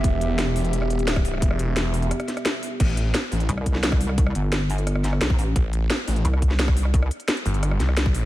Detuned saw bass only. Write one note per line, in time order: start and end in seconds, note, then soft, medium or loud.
0.04 1.03 E1 loud
1.03 1.25 D1 loud
1.25 1.41 C1 loud
1.42 1.58 E1 loud
1.59 2.11 E1 loud
2.80 3.13 A1 loud
3.32 3.48 A1 medium
5.56 5.89 A1 loud
6.08 6.23 A1 loud
7.46 7.79 G1 loud
7.80 8.25 C2 loud